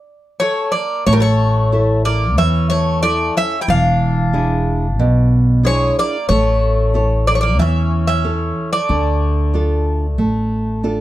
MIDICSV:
0, 0, Header, 1, 5, 480
1, 0, Start_track
1, 0, Tempo, 651466
1, 782, Time_signature, 4, 2, 24, 8
1, 8110, End_track
2, 0, Start_track
2, 0, Title_t, "Bouzouki"
2, 0, Program_c, 0, 25
2, 0, Note_on_c, 0, 74, 86
2, 292, Note_on_c, 0, 73, 76
2, 507, Note_off_c, 0, 74, 0
2, 528, Note_on_c, 0, 74, 80
2, 545, Note_off_c, 0, 73, 0
2, 782, Note_off_c, 0, 74, 0
2, 785, Note_on_c, 0, 73, 85
2, 830, Note_on_c, 0, 70, 73
2, 831, Note_off_c, 0, 73, 0
2, 882, Note_off_c, 0, 70, 0
2, 897, Note_on_c, 0, 73, 86
2, 1484, Note_off_c, 0, 73, 0
2, 1511, Note_on_c, 0, 74, 80
2, 1734, Note_off_c, 0, 74, 0
2, 1755, Note_on_c, 0, 76, 84
2, 1976, Note_off_c, 0, 76, 0
2, 1987, Note_on_c, 0, 73, 83
2, 2213, Note_off_c, 0, 73, 0
2, 2229, Note_on_c, 0, 74, 89
2, 2478, Note_off_c, 0, 74, 0
2, 2486, Note_on_c, 0, 76, 103
2, 2657, Note_off_c, 0, 76, 0
2, 2665, Note_on_c, 0, 79, 78
2, 2714, Note_off_c, 0, 79, 0
2, 2726, Note_on_c, 0, 77, 107
2, 4133, Note_off_c, 0, 77, 0
2, 4174, Note_on_c, 0, 73, 91
2, 4389, Note_off_c, 0, 73, 0
2, 4415, Note_on_c, 0, 74, 93
2, 4629, Note_off_c, 0, 74, 0
2, 4632, Note_on_c, 0, 73, 88
2, 5356, Note_off_c, 0, 73, 0
2, 5359, Note_on_c, 0, 74, 86
2, 5409, Note_off_c, 0, 74, 0
2, 5417, Note_on_c, 0, 73, 69
2, 5455, Note_off_c, 0, 73, 0
2, 5458, Note_on_c, 0, 74, 76
2, 5592, Note_off_c, 0, 74, 0
2, 5595, Note_on_c, 0, 76, 85
2, 5941, Note_off_c, 0, 76, 0
2, 5949, Note_on_c, 0, 76, 85
2, 6427, Note_off_c, 0, 76, 0
2, 6430, Note_on_c, 0, 74, 73
2, 7950, Note_off_c, 0, 74, 0
2, 8110, End_track
3, 0, Start_track
3, 0, Title_t, "Nylon-string guitar"
3, 0, Program_c, 1, 24
3, 785, Note_on_c, 1, 57, 63
3, 1253, Note_off_c, 1, 57, 0
3, 1269, Note_on_c, 1, 64, 53
3, 1270, Note_on_c, 1, 69, 48
3, 1276, Note_on_c, 1, 76, 55
3, 1654, Note_off_c, 1, 64, 0
3, 1654, Note_off_c, 1, 69, 0
3, 1658, Note_off_c, 1, 76, 0
3, 1750, Note_on_c, 1, 52, 71
3, 2217, Note_off_c, 1, 52, 0
3, 2229, Note_on_c, 1, 64, 50
3, 2232, Note_on_c, 1, 69, 47
3, 2234, Note_on_c, 1, 76, 49
3, 2615, Note_off_c, 1, 64, 0
3, 2617, Note_off_c, 1, 69, 0
3, 2617, Note_off_c, 1, 76, 0
3, 2714, Note_on_c, 1, 52, 63
3, 3181, Note_off_c, 1, 52, 0
3, 3192, Note_on_c, 1, 62, 52
3, 3196, Note_on_c, 1, 68, 58
3, 3198, Note_on_c, 1, 64, 45
3, 3578, Note_off_c, 1, 62, 0
3, 3580, Note_off_c, 1, 64, 0
3, 3581, Note_off_c, 1, 68, 0
3, 3680, Note_on_c, 1, 47, 67
3, 4144, Note_off_c, 1, 47, 0
3, 4150, Note_on_c, 1, 62, 49
3, 4155, Note_on_c, 1, 64, 45
3, 4161, Note_on_c, 1, 68, 49
3, 4537, Note_off_c, 1, 62, 0
3, 4539, Note_off_c, 1, 64, 0
3, 4543, Note_off_c, 1, 68, 0
3, 4631, Note_on_c, 1, 57, 64
3, 5099, Note_off_c, 1, 57, 0
3, 5113, Note_on_c, 1, 64, 52
3, 5116, Note_on_c, 1, 69, 44
3, 5122, Note_on_c, 1, 73, 57
3, 5497, Note_off_c, 1, 64, 0
3, 5499, Note_off_c, 1, 69, 0
3, 5503, Note_off_c, 1, 73, 0
3, 5591, Note_on_c, 1, 52, 67
3, 6057, Note_off_c, 1, 52, 0
3, 6072, Note_on_c, 1, 64, 46
3, 6077, Note_on_c, 1, 69, 45
3, 6079, Note_on_c, 1, 73, 53
3, 6456, Note_off_c, 1, 64, 0
3, 6457, Note_off_c, 1, 69, 0
3, 6459, Note_off_c, 1, 73, 0
3, 6550, Note_on_c, 1, 50, 63
3, 7014, Note_off_c, 1, 50, 0
3, 7026, Note_on_c, 1, 62, 46
3, 7031, Note_on_c, 1, 65, 45
3, 7037, Note_on_c, 1, 69, 56
3, 7409, Note_off_c, 1, 62, 0
3, 7412, Note_off_c, 1, 65, 0
3, 7413, Note_off_c, 1, 69, 0
3, 7502, Note_on_c, 1, 57, 64
3, 7965, Note_off_c, 1, 57, 0
3, 7983, Note_on_c, 1, 62, 45
3, 7986, Note_on_c, 1, 65, 46
3, 7989, Note_on_c, 1, 69, 52
3, 8110, Note_off_c, 1, 62, 0
3, 8110, Note_off_c, 1, 65, 0
3, 8110, Note_off_c, 1, 69, 0
3, 8110, End_track
4, 0, Start_track
4, 0, Title_t, "Bouzouki"
4, 0, Program_c, 2, 25
4, 305, Note_on_c, 2, 57, 71
4, 527, Note_off_c, 2, 57, 0
4, 539, Note_on_c, 2, 58, 57
4, 765, Note_off_c, 2, 58, 0
4, 788, Note_on_c, 2, 57, 68
4, 833, Note_off_c, 2, 57, 0
4, 833, Note_on_c, 2, 55, 64
4, 880, Note_off_c, 2, 55, 0
4, 886, Note_on_c, 2, 57, 71
4, 1479, Note_off_c, 2, 57, 0
4, 1512, Note_on_c, 2, 58, 68
4, 1734, Note_off_c, 2, 58, 0
4, 1754, Note_on_c, 2, 61, 77
4, 1976, Note_off_c, 2, 61, 0
4, 1998, Note_on_c, 2, 57, 73
4, 2219, Note_off_c, 2, 57, 0
4, 2237, Note_on_c, 2, 57, 82
4, 2458, Note_off_c, 2, 57, 0
4, 2481, Note_on_c, 2, 61, 72
4, 2654, Note_off_c, 2, 61, 0
4, 2662, Note_on_c, 2, 64, 67
4, 2709, Note_off_c, 2, 64, 0
4, 2715, Note_on_c, 2, 62, 89
4, 4128, Note_off_c, 2, 62, 0
4, 4161, Note_on_c, 2, 56, 78
4, 4382, Note_off_c, 2, 56, 0
4, 4412, Note_on_c, 2, 58, 69
4, 4628, Note_off_c, 2, 58, 0
4, 4649, Note_on_c, 2, 57, 68
4, 5333, Note_off_c, 2, 57, 0
4, 5365, Note_on_c, 2, 58, 61
4, 5405, Note_off_c, 2, 58, 0
4, 5408, Note_on_c, 2, 57, 54
4, 5454, Note_off_c, 2, 57, 0
4, 5473, Note_on_c, 2, 58, 71
4, 5595, Note_off_c, 2, 58, 0
4, 5612, Note_on_c, 2, 61, 75
4, 5938, Note_off_c, 2, 61, 0
4, 5961, Note_on_c, 2, 61, 77
4, 6406, Note_off_c, 2, 61, 0
4, 6429, Note_on_c, 2, 57, 62
4, 7950, Note_off_c, 2, 57, 0
4, 8110, End_track
5, 0, Start_track
5, 0, Title_t, "Upright bass"
5, 0, Program_c, 3, 32
5, 785, Note_on_c, 3, 33, 99
5, 1747, Note_off_c, 3, 33, 0
5, 1747, Note_on_c, 3, 40, 88
5, 2422, Note_off_c, 3, 40, 0
5, 2713, Note_on_c, 3, 28, 93
5, 3678, Note_off_c, 3, 28, 0
5, 3678, Note_on_c, 3, 35, 85
5, 4349, Note_off_c, 3, 35, 0
5, 4641, Note_on_c, 3, 33, 102
5, 5600, Note_off_c, 3, 33, 0
5, 5600, Note_on_c, 3, 40, 87
5, 6268, Note_off_c, 3, 40, 0
5, 6556, Note_on_c, 3, 38, 100
5, 7503, Note_off_c, 3, 38, 0
5, 7503, Note_on_c, 3, 33, 84
5, 8110, Note_off_c, 3, 33, 0
5, 8110, End_track
0, 0, End_of_file